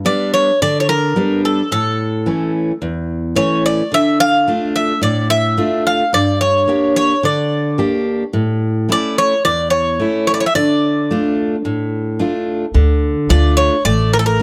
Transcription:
0.05 G3 B3 D4 D5
0.34 C#5
0.62 D3 D5
0.80 C#5
0.89 A#4
1.16 G3 B3 D4
1.45 A4
1.72 A2 A4
2.26 E3 A3 C#4
2.82 E2
3.36 E3 A3 C#4 C#5
3.66 D5
3.92 D3 E5
4.20 F5
4.47 A3 D4 F4
4.76 E5
5.01 A2 D5
5.30 E5
5.57 A3 D4 F4
5.87 F5
6.13 G2 D5
6.41 C#5
6.68 A#3 D4 G4
6.96 C#5
7.23 D3 D5
7.78 A#3 D4 G4
8.33 A2
8.89 A3 C#4 E4 D5
9.18 C#5
9.45 E2 D5
9.70 C#5
10.00 A3 C#4 E4
10.27 C#5
10.34 D5
10.40 C#5
10.46 E5
10.55 D3 D5
11.11 A3 D4 F4
11.65 A2
12.19 A3 D4 F4
12.74 D2 D3
13.29 D2 A3 D4 F4 D5
13.57 C#5
13.85 A1 A3 D5
14.13 A#4
14.19 A4
14.26 A#4

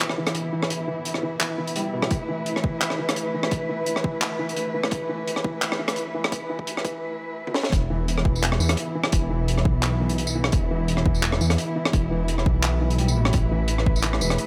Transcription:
Already playing: E3 B3 E4
0.00 clap
0.09 cross-stick
0.18 E3
0.27 cross-stick, closed hi-hat
0.35 closed hi-hat
0.53 E3
0.63 cross-stick
0.70 closed hi-hat
0.88 E3
1.05 closed hi-hat
1.14 cross-stick
1.23 E3
1.40 clap, closed hi-hat
1.58 E3
1.67 closed hi-hat
1.76 G3, closed hi-hat
1.93 B2
2.02 cross-stick
2.11 A3 B4, kick, closed hi-hat
2.29 E3
2.46 closed hi-hat
2.56 cross-stick
2.64 E3, kick
2.81 clap, closed hi-hat
2.90 cross-stick
2.99 E3
3.09 cross-stick, closed hi-hat
3.16 closed hi-hat
3.34 E3
3.43 cross-stick
3.51 kick, closed hi-hat
3.69 E3
3.86 closed hi-hat
3.96 cross-stick
4.04 E3, kick
4.21 clap, closed hi-hat
4.39 E3
4.49 closed hi-hat
4.57 closed hi-hat
4.74 E3
4.83 cross-stick
4.91 kick, closed hi-hat
5.09 E3
5.28 closed hi-hat
5.36 cross-stick
5.44 E3, kick
5.62 clap, closed hi-hat
5.72 cross-stick
5.79 E3
5.88 cross-stick, closed hi-hat
5.96 closed hi-hat
6.14 E3
6.24 cross-stick
6.32 kick, closed hi-hat
6.49 E3
6.59 kick
6.67 closed hi-hat
6.77 cross-stick
6.85 E3, kick, closed hi-hat
7.47 high tom
7.54 snare
7.63 snare
7.72 E1 E3 B3 E4, kick, closed hi-hat
7.90 E3
8.08 closed hi-hat
8.18 cross-stick
8.25 E3, kick
8.35 tambourine
8.43 clap, closed hi-hat
8.52 cross-stick
8.60 E2 E3, tambourine
8.69 cross-stick, closed hi-hat
8.77 closed hi-hat
8.95 E3
9.04 cross-stick
9.12 E1, kick, closed hi-hat
9.30 E3
9.48 closed hi-hat
9.58 cross-stick
9.65 B1 E3, kick
9.83 clap, closed hi-hat
10.00 E3
10.09 closed hi-hat
10.18 closed hi-hat
10.27 tambourine
10.35 E3
10.44 cross-stick
10.52 E1, kick, closed hi-hat
10.71 E3
10.88 closed hi-hat
10.97 cross-stick
11.06 E3, kick
11.14 tambourine
11.23 clap, closed hi-hat
11.32 cross-stick
11.41 E2 E3, tambourine
11.50 cross-stick, closed hi-hat
11.58 closed hi-hat
11.76 E3
11.85 cross-stick
11.93 E1, kick, closed hi-hat
12.11 E3
12.28 closed hi-hat
12.38 cross-stick
12.46 B1 E3, kick
12.63 clap, closed hi-hat
12.81 B1 E3
12.90 closed hi-hat
12.98 G3, closed hi-hat
13.08 tambourine
13.16 A1 B2
13.25 cross-stick
13.33 A1 A3 B4, kick, closed hi-hat
13.51 E3
13.68 closed hi-hat
13.78 cross-stick
13.86 kick
13.96 tambourine
14.03 E3, clap, closed hi-hat
14.13 cross-stick
14.21 E1 E3, tambourine
14.30 cross-stick, closed hi-hat
14.38 closed hi-hat

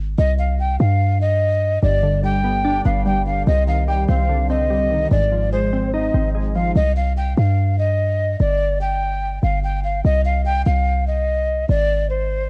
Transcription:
Already playing: G#1
0.18 C2 D#5
0.39 F5
0.59 G5
0.80 G2 F5
1.21 D#5
1.83 G1 G2 D5
2.03 D3
2.24 G3 G5
2.44 B3
2.65 D4
2.85 G1 B3 F5
3.06 G3 G5
3.26 D3 F5
3.47 C2 C3 D#5
3.67 D#3 F5
3.88 G3 G5
4.09 C2 C4 F5
4.29 D3
4.50 C4 D#5
4.70 G3
4.91 D#3
5.11 G#1 G#2 D5
5.32 F3
5.52 G#3 C5
5.73 C4
5.94 D#4 D#5
6.14 G#1 C4
6.35 G#3
6.55 F3 F5
6.76 C2 D#5
6.97 F5
7.17 G5
7.37 G2 F5
7.79 D#5
8.40 G1 D5
8.81 G5
9.43 G1 F5
9.64 G5
9.84 F5
10.05 C2 D#5
10.25 F5
10.45 G5
10.66 C2 F5
11.07 D#5
11.69 G#1 D5
12.10 C5

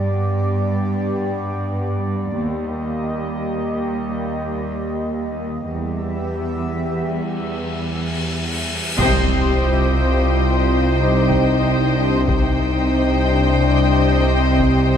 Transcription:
Already playing: G2 G3 B3 G4 D5
2.39 D#2 G3 A#3 G4 D#5
5.69 E2 G3 B3 G4 E5, cymbal swell
8.98 C2 C3 G3 C4 G4 C5 D#5 G5, taiko, impact
9.65 F4
10.96 D#4
11.30 taiko
11.96 D4
12.28 C2 C3 G3 C4 D#4 G4 C5 D#5 G5, taiko
13.28 D4
14.27 C4
14.60 taiko

